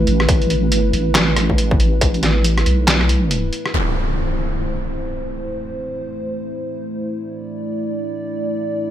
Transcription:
0.00 3.70 A3 medium
0.00 3.70 E4 medium
0.00 3.73 B4 medium
0.07 0.27 A1 loud
0.07 closed hi-hat soft
0.20 cross-stick medium
0.29 0.74 A1 medium
0.29 kick loud
0.29 closed hi-hat medium
0.42 closed hi-hat soft
0.50 closed hi-hat medium
0.72 0.92 G#1 medium
0.72 closed hi-hat medium
0.93 1.78 A1 medium
0.93 closed hi-hat medium
1.15 snare loud
1.15 clap medium
1.15 closed hi-hat medium
1.36 cross-stick medium
1.36 closed hi-hat medium
1.50 kick medium
1.58 closed hi-hat medium
1.71 kick loud
1.80 2.65 A1 loud
1.80 closed hi-hat medium
2.01 kick loud
2.01 closed hi-hat medium
2.14 closed hi-hat soft
2.23 snare medium
2.23 closed hi-hat medium
2.44 closed hi-hat medium
2.58 cross-stick medium
2.58 closed hi-hat soft
2.66 3.51 B1 loud
2.66 closed hi-hat medium
2.88 snare loud
2.88 clap medium
2.88 closed hi-hat medium
3.01 cross-stick medium
3.09 closed hi-hat medium
3.31 closed hi-hat medium
3.53 closed hi-hat medium
3.66 cross-stick medium
3.74 8.91 A3 medium
3.74 8.91 E4 medium
3.74 7.19 C5 medium
3.74 impact medium
7.20 8.91 D5 medium

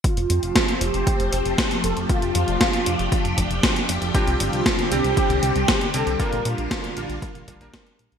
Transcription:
0.04 4.11 F3 medium
0.04 4.11 A3 medium
0.04 2.07 C4 medium
0.04 0.84 F4 loud
0.04 6.16 G4 medium
0.04 kick loud
0.04 closed hi-hat medium
0.17 0.27 F1 medium
0.17 closed hi-hat soft
0.30 0.40 F2 medium
0.30 closed hi-hat medium
0.43 0.52 F1 medium
0.43 closed hi-hat soft
0.56 kick loud
0.56 snare loud
0.56 closed hi-hat medium
0.68 closed hi-hat soft
0.81 0.91 F1 medium
0.81 1.87 G4 loud
0.81 closed hi-hat medium
0.94 1.04 F1 medium
0.94 closed hi-hat soft
1.07 kick loud
1.07 closed hi-hat medium
1.20 1.29 F1 medium
1.20 closed hi-hat soft
1.33 1.42 F1 medium
1.33 closed hi-hat medium
1.46 1.55 F1 medium
1.46 closed hi-hat soft
1.58 kick loud
1.58 snare loud
1.58 closed hi-hat medium
1.71 closed hi-hat soft
1.84 1.93 F1 medium
1.84 1.95 A4 loud
1.84 closed hi-hat medium
1.97 2.06 F1 medium
1.97 closed hi-hat soft
2.09 4.13 D4 medium
2.09 2.33 F4 loud
2.09 kick loud
2.09 closed hi-hat medium
2.22 2.32 F1 medium
2.22 closed hi-hat soft
2.35 2.45 F2 medium
2.35 3.34 F4 loud
2.35 closed hi-hat medium
2.48 2.58 F1 medium
2.48 closed hi-hat soft
2.61 kick loud
2.61 snare loud
2.61 closed hi-hat medium
2.73 closed hi-hat soft
2.86 2.96 F1 medium
2.86 closed hi-hat medium
2.99 3.09 F1 medium
2.99 closed hi-hat soft
3.12 kick loud
3.12 closed hi-hat medium
3.25 3.34 F1 medium
3.25 closed hi-hat soft
3.38 3.47 F1 medium
3.38 kick medium
3.38 closed hi-hat medium
3.51 3.60 F1 medium
3.51 closed hi-hat soft
3.63 kick loud
3.63 snare loud
3.63 closed hi-hat medium
3.76 closed hi-hat soft
3.89 3.99 F1 medium
3.89 closed hi-hat medium
4.02 4.11 F1 medium
4.02 closed hi-hat soft
4.14 6.18 D3 medium
4.14 4.88 G3 medium
4.14 8.18 G3 medium
4.14 4.88 C4 medium
4.14 6.18 C4 medium
4.14 4.88 D4 medium
4.14 4.94 F4 loud
4.14 4.88 G4 loud
4.14 kick loud
4.14 closed hi-hat medium
4.27 4.37 C2 medium
4.27 closed hi-hat soft
4.40 4.50 G1 medium
4.40 closed hi-hat medium
4.53 4.63 C2 medium
4.53 closed hi-hat soft
4.66 kick loud
4.66 snare loud
4.66 closed hi-hat medium
4.79 closed hi-hat soft
4.91 5.01 C2 medium
4.91 5.91 G3 medium
4.91 5.91 C4 medium
4.91 5.91 D4 medium
4.91 5.90 G4 loud
4.91 5.91 G4 medium
4.91 closed hi-hat medium
5.04 5.14 C2 medium
5.04 closed hi-hat soft
5.17 kick loud
5.17 closed hi-hat medium
5.30 5.40 C2 medium
5.30 closed hi-hat soft
5.43 5.52 C2 medium
5.43 closed hi-hat medium
5.56 5.65 C2 medium
5.56 closed hi-hat soft
5.68 kick loud
5.68 snare loud
5.68 closed hi-hat medium
5.81 closed hi-hat soft
5.94 6.04 C2 medium
5.94 6.17 G3 medium
5.94 6.17 C4 medium
5.94 6.17 D4 medium
5.94 6.17 G4 loud
5.94 6.20 A4 loud
5.94 closed hi-hat medium
6.07 6.16 C2 medium
6.07 closed hi-hat soft
6.19 8.18 D3 medium
6.19 6.94 G3 medium
6.19 6.94 A#3 medium
6.19 8.18 A#3 medium
6.19 6.94 D4 medium
6.19 6.94 F4 loud
6.19 8.18 F4 loud
6.19 6.46 A#4 loud
6.19 kick loud
6.19 closed hi-hat medium
6.32 6.42 A#1 medium
6.32 closed hi-hat soft
6.45 6.55 A#2 medium
6.45 7.44 F4 loud
6.45 closed hi-hat medium
6.58 6.68 A#1 medium
6.58 closed hi-hat soft
6.71 kick loud
6.71 snare loud
6.71 closed hi-hat medium
6.84 closed hi-hat soft
6.97 7.06 A#1 medium
6.97 7.45 G3 medium
6.97 7.45 A#3 medium
6.97 7.45 D4 medium
6.97 7.45 F4 loud
6.97 closed hi-hat medium
7.09 7.19 A#1 medium
7.09 closed hi-hat soft
7.22 kick loud
7.22 closed hi-hat medium
7.35 7.45 A#1 medium
7.35 closed hi-hat soft
7.48 7.57 A#1 medium
7.48 7.58 G3 medium
7.48 7.58 A#3 medium
7.48 7.58 D4 medium
7.48 7.58 F4 medium
7.48 kick medium
7.48 closed hi-hat medium
7.61 7.70 A#1 medium
7.61 8.18 G3 medium
7.61 8.18 A#3 medium
7.61 8.18 D4 medium
7.61 8.18 A#4 loud
7.61 closed hi-hat soft
7.74 kick loud
7.74 snare loud
7.74 closed hi-hat medium
7.87 closed hi-hat soft
7.99 8.09 A#1 medium
7.99 closed hi-hat medium
8.12 8.18 A#1 medium
8.12 closed hi-hat soft

